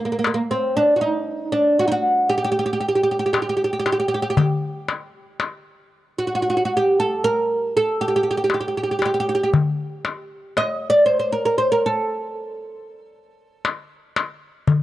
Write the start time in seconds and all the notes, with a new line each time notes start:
0.05 A#3
0.12 A#3
0.19 A#3
0.24 A#3, darbuka tek
0.34 A#3
0.51 C4
0.77 D4
0.96 F#4
1.01 D#4
1.52 D4
1.79 F#4
1.88 D#4
1.92 F#4
2.29 G4
2.38 G4
2.44 G4
2.52 G4
2.59 G4
2.66 G4
2.73 G4
2.80 G4
2.88 G4
2.95 G4
3.03 G4
3.11 G4
3.19 G4
3.26 G4
3.33 G4, darbuka tek
3.42 G4
3.49 G4
3.57 G4
3.64 G4
3.73 G4
3.79 G4
3.86 G4, darbuka tek
3.92 G4
4.00 G4
4.08 G4
4.14 G4
4.22 G4
4.30 G4
4.37 G4, darbuka dum
4.88 darbuka tek
5.40 darbuka tek
6.18 F#4
6.27 F#4
6.35 F#4
6.42 F#4
6.50 F#4
6.57 F#4
6.65 F#4
6.77 G4
7.00 A4
7.24 A#4
7.77 A4
8.01 G4
8.08 G4
8.16 G4
8.23 G4
8.31 G4
8.37 G4
8.44 G4
8.50 darbuka tek
8.54 G4
8.60 G4
8.68 G4
8.77 G4
8.83 G4
8.91 G4
8.99 G4, darbuka tek
9.05 G4
9.14 G4
9.20 G4
9.29 G4
9.35 G4
9.43 G4
9.54 darbuka dum
10.05 darbuka tek
10.57 D#5, darbuka tek
10.90 D5
11.06 C5
11.19 C5
11.32 A#4
11.45 A#4
11.58 C5
11.72 A#4
11.86 A4
13.65 darbuka tek
14.16 darbuka tek
14.68 darbuka dum